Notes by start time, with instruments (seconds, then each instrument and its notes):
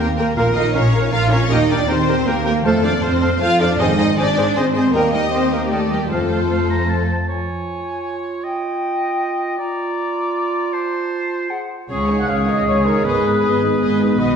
0.00 double bass section D#2, cello section A#3, violin section A#4
0.16 cello section A#3, viola section G4 A#4, violin section A#4, clarinet A#4, oboe G5, flute A#5
0.35 double bass section A#1, trombone section A#2 A#3, cello section A#3, french horn section F4 A#4, viola section F4 A#4, violin section A#4, clarinet A#4, oboe F5, flute A#5
0.53 cello section D#4, clarinet A#4, violin section D#5, oboe F5, flute A#5
0.58 viola section F4 A#4
0.73 double bass section A#1, cello section C#4, viola section F4 A#4, clarinet A#4, violin section C#5, oboe F5, flute A#5
0.93 viola section F4 A#4, clarinet A#4, oboe F5, flute A#5
1.10 double bass section A#1, cello section F4, viola section F4 A#4, clarinet A#4, violin section F5, flute A#5
1.16 oboe F5
1.30 cello section C#4, viola section F4 A#4, clarinet A#4, violin section C#5, oboe F5, flute A#5
1.50 double bass section D#2, trombone section A#2 A#3, cello section D#4, french horn section G4 A#4, viola section G4 A#4, clarinet A#4, violin section D#5, oboe G5, flute A#5
1.68 cello section D4, viola section G4 A#4, clarinet A#4, violin section D5, oboe G5, flute A#5
1.88 double bass section D#2, cello section C4, viola section G4 A#4, clarinet A#4, violin section C5, oboe G5, flute A#5
2.08 viola section G4 A#4, clarinet A#4, oboe G5, flute A#5
2.26 double bass section D#2, cello section A#3, viola section G4 A#4, violin section A#4, clarinet A#4, oboe G5, flute A#5
2.44 cello section A#3, viola section G4 A#4, clarinet A#4, violin section A#4, oboe G5, flute A#5
2.64 double bass section F2, trombone section F3 A3, cello section A3, french horn section A4 C5, violin section A4, viola section A4, clarinet C5, oboe F5, flute A5
2.83 cello section D4, viola section A4, clarinet C5, violin section D5, oboe F5, flute A5
3.01 double bass section F2, cello section C4, viola section A4, violin section C5, oboe F5, flute A5
3.05 clarinet C5
3.22 viola section A4, clarinet C5, oboe F5, flute A5
3.40 double bass section F2, cello section F4, viola section A4, clarinet C5, violin section F5, oboe F5, flute A5
3.60 cello section D4, viola section A4, clarinet C5, violin section D5, oboe F5, flute A5
3.79 double bass section G#1, trombone section D#3 C4, cello section D#4, viola section G#4 C5, french horn section G#4 C5, clarinet C5, violin section D#5, oboe D#5, flute G#5
3.97 cello section D#4, viola section G#4 C5, violin section D#5, oboe D#5, flute G#5
4.01 clarinet C5
4.16 double bass section G#1, cello section D4, viola section G#4 C5, clarinet C5, violin section D5, oboe D#5, flute G#5
4.37 viola section G#4 C5, clarinet C5, oboe D#5, flute G#5
4.55 double bass section G#1, cello section C4, viola section G#4 C5, violin section C5, clarinet C5, oboe D#5, flute G#5
4.74 cello section C4, viola section G#4 C5, violin section C5, clarinet C5, oboe D#5, flute G#5
4.93 double bass section D#2, trombone section D#3 G3, cello section A#3, viola section G4 D#5, french horn section G4 A#4, violin section A#4, clarinet A#4, oboe D#5, flute G5
5.13 cello section D#4, clarinet A#4, violin section D#5, oboe D#5, flute G5
5.32 cello section C4, clarinet A#4, violin section C5, oboe D#5, flute G5
5.52 cello section A#3, violin section A#4, clarinet A#4, oboe D#5, flute G5
5.71 cello section A3, violin section A4, clarinet A#4, viola section D5, oboe D#5, flute G5
5.89 cello section G3, violin section G4, clarinet A#4, oboe D#5
5.94 flute G5
6.10 double bass section F2, trombone section C3 F3, cello section A3, viola section F4 C5, french horn section A4 C5, violin section A4, clarinet C5, oboe F5, flute A5
6.31 clarinet C5, oboe F5, flute A5
6.51 clarinet C5, oboe F5, flute A5
6.70 clarinet C5, flute A5, oboe A#5
6.89 clarinet C5, oboe A5, flute A5
7.11 clarinet C5, flute A5
7.28 clarinet F4, oboe C#5, flute G#5
8.44 oboe D#5, flute G5
9.57 clarinet F4, oboe D5, flute A#5
10.73 oboe C5, flute A5
11.50 clarinet G#4, flute F#5
11.88 double bass section C#2, cello section C#3, trombone section D#3 G#3, french horn section G#3 G#4, viola section C#4, clarinet G#4, oboe G#4, violin section G#4 C#5, trumpet section C#5, flute D#6
12.08 viola section D#4, violin section G#4 C#5
12.19 trumpet section F#5
12.27 double bass section C#2, cello section C#3, viola section C#4, violin section G#4 C#5, trumpet section F5
12.47 viola section D#4, violin section G#4 C#5, trumpet section D#5
12.67 double bass section C#2, cello section C#3, viola section C#4, violin section G#4 C#5, trumpet section C#5
12.86 viola section D#4, violin section G#4 C#5, trumpet section A#4
13.04 double bass section G#1, cello section G#2, french horn section B3, viola section B3, violin section G#4 D#5, oboe B4, trumpet section B4
13.24 viola section D#4, violin section B4
13.41 double bass section G#1, cello section G#2, viola section B3, violin section G#4 D#5
13.61 viola section D#4, violin section B4
13.81 double bass section G#1, cello section G#2, viola section B3, violin section G#4 D#5
13.99 viola section D#4, violin section B4
14.17 double bass section B1, cello section B2, trombone section D#3 F#3, viola section D#4, clarinet F#4, violin section F#4 D#5, french horn section B4, trumpet section D#5, flute B5